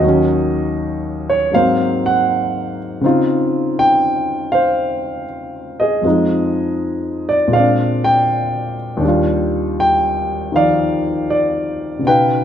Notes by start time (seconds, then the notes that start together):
Already playing: D#2 F#4 D#5
0.01 D#3 F#3
0.08 C#4
1.29 C#5
1.51 G#2 F#3 A#3 F5
1.56 C4 C5
2.06 F#5
3.01 C#3 C4 D#4
3.06 F4
3.79 G5
4.52 C5 F5
5.80 G#4 D#5
6.02 F2 F3 G#3
6.07 D#4
7.29 D5
7.48 A#2
7.52 G#3 C4 D5 F5
7.59 D4
8.04 G5
8.97 D#2 D4
9.05 G3 F4
9.80 G5
10.52 D#3 F3 D#4 F5
10.57 D5
11.30 D5
11.99 B2 C#3
12.07 D#4 B4 G5
12.11 F5